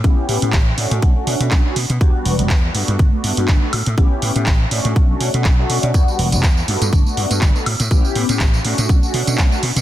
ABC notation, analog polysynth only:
X:1
M:4/4
L:1/16
Q:"Swing 16ths" 1/4=122
K:Amix
V:1 name="Analog polysynth"
[B,CEG]3 [B,CEG] z2 [A,CDF]3 [A,CDF]4 [A,CDF] z2 | [G,B,DF]3 [G,B,DF] z2 [A,B,DF]3 [A,B,DF]4 [A,B,DF] z2 | [B,CEG]3 [B,CEG] z2 [A,CDF]3 [A,CDF]2 [A,CDF] z [A,CDF]3 | [G,B,DF]3 [G,B,DF] z2 [A,B,DF]3 [A,B,DF]4 [A,B,DF] z2 |
[B,CEG]3 [B,CEG] z2 [A,CDF]3 [A,CDF]4 [A,CDF] z2 |]